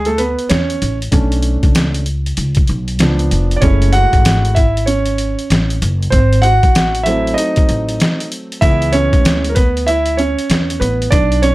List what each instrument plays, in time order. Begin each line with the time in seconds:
Already playing: upright bass D2
0.05 grand piano A3 A4, closed hi-hat
0.18 grand piano B3 B4, closed hi-hat
0.39 closed hi-hat
0.49 upright bass E2, grand piano C#4 C#5, snare, closed hi-hat
0.70 closed hi-hat
0.82 upright bass A1, closed hi-hat
1.02 closed hi-hat
1.12 upright bass B1, grand piano A3 C#4 D4, kick, closed hi-hat
1.32 closed hi-hat
1.43 closed hi-hat
1.63 upright bass C#2, kick, closed hi-hat
1.75 snare, closed hi-hat
1.94 closed hi-hat
2.06 closed hi-hat
2.26 closed hi-hat
2.37 upright bass C#2, closed hi-hat
2.55 kick, closed hi-hat
2.67 upright bass B1, closed hi-hat
2.88 closed hi-hat
2.99 upright bass C#2, grand piano F3 B3 D4, snare, closed hi-hat
3.19 closed hi-hat
3.31 upright bass F1, closed hi-hat
3.51 closed hi-hat
3.56 grand piano D5
3.61 upright bass F#1, grand piano G#3 A3 C#4 E4 C#5, kick, closed hi-hat
3.82 closed hi-hat
3.93 grand piano F#4 F#5, closed hi-hat
4.13 upright bass G#1, kick, closed hi-hat
4.25 snare, closed hi-hat
4.45 closed hi-hat
4.55 grand piano E4 E5, kick, closed hi-hat
4.77 closed hi-hat
4.86 grand piano C#4 C#5, closed hi-hat
5.06 closed hi-hat
5.18 closed hi-hat
5.39 closed hi-hat
5.50 upright bass A1, snare, closed hi-hat
5.70 closed hi-hat
5.82 upright bass F#1, closed hi-hat
6.03 closed hi-hat
6.10 upright bass G#1, grand piano C4 C5, kick, closed hi-hat
6.33 closed hi-hat
6.42 grand piano F#4 F#5, closed hi-hat
6.63 upright bass A1, kick, closed hi-hat
6.75 snare, closed hi-hat
6.95 closed hi-hat
7.03 grand piano F#3 A3 C4 E4 E5, closed hi-hat
7.27 closed hi-hat
7.34 grand piano D#4 D#5, closed hi-hat
7.56 kick, closed hi-hat
7.69 upright bass A1, closed hi-hat
7.89 closed hi-hat
8.00 snare, closed hi-hat
8.20 closed hi-hat
8.32 closed hi-hat
8.52 closed hi-hat
8.61 upright bass C#2, grand piano E3 G#3 B3 E4 E5, kick, closed hi-hat
8.82 closed hi-hat
8.92 grand piano C#4 C#5, closed hi-hat
9.13 upright bass D2, kick, closed hi-hat
9.25 snare, closed hi-hat
9.44 closed hi-hat
9.49 grand piano A#4
9.55 grand piano B3 B4, kick, closed hi-hat
9.77 closed hi-hat
9.87 grand piano E4 E5, closed hi-hat
10.06 closed hi-hat
10.17 grand piano C#4 C#5, closed hi-hat
10.39 closed hi-hat
10.50 upright bass E2, snare, closed hi-hat
10.70 closed hi-hat
10.80 upright bass A1, grand piano B3 B4, closed hi-hat
11.02 closed hi-hat
11.11 upright bass B1, grand piano D4 D5, kick, closed hi-hat
11.32 closed hi-hat
11.42 grand piano C#4 C#5, closed hi-hat